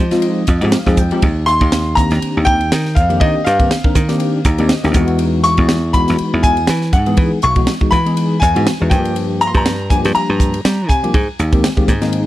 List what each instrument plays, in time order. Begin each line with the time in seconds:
Already playing: grand piano D#5
0.00 slap bass F3
0.11 tine electric piano F3 G#3 C4 D#4 F4, snare, ride
0.22 ride
0.47 slap bass F2, tine electric piano D#5, kick, hi-hat pedal, ride
0.61 slap bass G#2, tine electric piano F3 G#3 C4 D#4 G4, ride
0.72 tine electric piano F5, snare, ride
0.86 slap bass F2, tine electric piano F3 G#3 C4 D#4 G#4, kick, snare
0.97 tine electric piano G5, kick, hi-hat pedal, ride
1.11 tine electric piano F3 G#3 C4 D#4 G4, ride
1.22 slap bass D#2, kick, ride
1.46 grand piano C6, hi-hat pedal, ride
1.61 slap bass D#2, kick, ride
1.72 snare, ride
1.95 tine electric piano D#3 A#3 C4 D4 G4, grand piano A#5, kick, hi-hat pedal, ride
2.11 slap bass D#2, snare, ride
2.22 muted slap bass stroke, ride
2.37 slap bass D#2
2.45 grand piano G5, kick, hi-hat pedal, ride
2.61 ride
2.72 slap bass D#3, snare, ride
2.85 snare
2.95 slap bass F2, grand piano F5, kick, hi-hat pedal, ride
3.09 tine electric piano D#3 A#3 C4 D4 G4, ride
3.20 slap bass D#3, grand piano D#5, kick, ride
3.44 slap bass G2, grand piano F5, snare, hi-hat pedal, ride
3.59 tine electric piano D#3 A#3 C4 D4 G4, kick, ride
3.71 snare, ride
3.84 tine electric piano D#3 A#3 C4 D4 A#4, kick
3.95 slap bass D#3, kick, hi-hat pedal, ride
4.08 tine electric piano D#3 A#3 C4 D4 G4, snare, ride
4.20 ride
4.45 slap bass D#2, tine electric piano A#5, kick, hi-hat pedal, ride
4.58 slap bass D#2, tine electric piano D#3 A#3 C4 D4 G4, ride
4.69 tine electric piano D#5, snare, ride
4.83 slap bass D2, tine electric piano D#3 A#3 C4 D4 G4, snare
4.94 slap bass E2, tine electric piano E3 G#3 B3 D#4 F#4, kick, hi-hat pedal, ride
5.08 ride
5.19 ride
5.44 grand piano C#6, snare, hi-hat pedal, ride
5.57 slap bass E2, kick, ride
5.69 snare, ride
5.93 tine electric piano E3 G#3 B3 D#4 F#4, grand piano B5, kick, hi-hat pedal, ride
6.08 slap bass E2, snare, ride
6.18 muted slap bass stroke, ride
6.34 slap bass E2
6.43 grand piano G#5, kick, hi-hat pedal, ride
6.57 ride
6.67 slap bass E3, snare, ride
6.81 snare
6.93 slap bass G#2, grand piano F#5, kick, hi-hat pedal, ride
7.06 tine electric piano E3 G#3 B3 D#4 G#4, ride
7.17 slap bass E3, kick, ride
7.42 slap bass B1, grand piano C#6, hi-hat pedal, ride
7.56 tine electric piano E3 G#3 B3 D#4 F#4, kick, ride
7.67 snare, ride
7.81 tine electric piano E3 G#3 B3 D#4 F#4, kick
7.91 slap bass E3, grand piano B5, kick, hi-hat pedal, ride
8.05 tine electric piano E3 G#3 B3 D#4 G#4, ride
8.17 ride
8.40 slap bass E2, grand piano G#5, kick, hi-hat pedal, ride
8.55 slap bass G#2, tine electric piano E3 G#3 B3 D#4 F#4, ride
8.67 snare, ride
8.80 slap bass E2, tine electric piano E3 G#3 B3 D#4 F#4
8.90 slap bass G2, tine electric piano F3 G3 A#3 D4 G4, grand piano G5, kick, hi-hat pedal, ride
9.05 ride
9.16 ride
9.41 grand piano A#5, hi-hat pedal, ride
9.47 grand piano C6
9.54 slap bass G2, grand piano A#5, kick, ride
9.66 snare, ride
9.90 tine electric piano F3 G3 A#3 D4 G4, grand piano G#5, kick, hi-hat pedal, ride
10.05 slap bass G2, snare, ride
10.15 grand piano A#5, muted slap bass stroke, ride
10.29 slap bass G2
10.40 kick, hi-hat pedal, ride
10.54 ride
10.65 slap bass G3, snare, ride
10.89 slap bass C3, grand piano G#5, kick, hi-hat pedal, ride
11.04 tine electric piano F3 G3 A#3 D4 G4, ride
11.14 slap bass G#2, kick, ride
11.39 slap bass D#2, hi-hat pedal, ride
11.53 tine electric piano D#3 G#3 A#3 C4 G4, kick, ride
11.64 snare, ride
11.77 tine electric piano D#3 G#3 A#3 C4 G4, kick
11.88 slap bass G#2, kick, hi-hat pedal, ride
12.01 tine electric piano D#3 G#3 A#3 C4 D#4, snare, ride
12.13 ride